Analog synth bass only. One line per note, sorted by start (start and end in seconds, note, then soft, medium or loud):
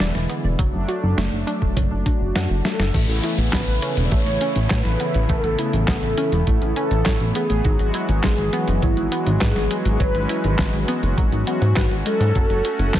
0.00 0.12 E1 loud
0.15 0.27 E1 medium
0.44 0.56 E1 medium
0.59 0.71 F#1 loud
0.74 0.85 F#1 medium
1.03 1.15 F#1 medium
1.18 1.30 F#1 loud
1.33 1.44 F#1 medium
1.62 1.74 E1 medium
1.77 1.88 F#1 loud
1.92 2.03 F#1 medium
2.21 2.32 F#1 medium
2.35 2.47 F#2 loud
2.50 2.62 F#1 medium
2.80 2.91 F#1 medium
2.94 3.06 A1 loud
3.09 3.21 A1 medium
3.38 3.50 A1 medium
3.53 3.65 A1 loud
3.67 3.79 A1 medium
3.97 4.09 E1 medium
4.12 4.24 A1 loud
4.27 4.38 A1 medium
4.56 4.68 A1 medium
4.71 4.82 A2 loud
4.85 4.97 A1 medium
5.15 5.27 A1 medium
5.29 5.41 A1 loud
5.44 5.56 A1 medium
5.73 5.85 A1 medium
5.88 6.00 A1 loud
6.03 6.15 A1 medium
6.32 6.44 E1 medium
6.47 6.59 A1 loud
6.62 6.73 A1 medium
6.91 7.03 A1 medium
7.06 7.18 A2 loud
7.21 7.32 A1 medium
7.50 7.62 A1 medium
7.65 7.77 G#1 loud
7.80 7.91 G#1 medium
8.09 8.21 G#1 medium
8.24 8.35 G#1 loud
8.38 8.50 G#1 medium
8.68 8.80 F#1 medium
8.82 8.94 G#1 loud
8.97 9.09 G#1 medium
9.27 9.38 G#1 medium
9.41 9.53 G#2 loud
9.56 9.68 G#1 medium
9.85 9.97 G#1 medium
10.00 10.12 G#1 loud
10.15 10.27 G#1 medium
10.44 10.56 G#1 medium
10.59 10.71 G#1 loud
10.74 10.85 G#1 medium
11.03 11.15 F#1 medium
11.18 11.29 G#1 loud
11.32 11.44 G#1 medium
11.62 11.74 G#2 medium
11.77 11.88 G#1 loud
11.91 12.03 G#1 medium
12.20 12.32 G#2 medium
12.35 12.47 F#1 loud
12.50 12.62 F#1 medium
12.79 12.91 F#1 medium
12.94 13.00 F#1 loud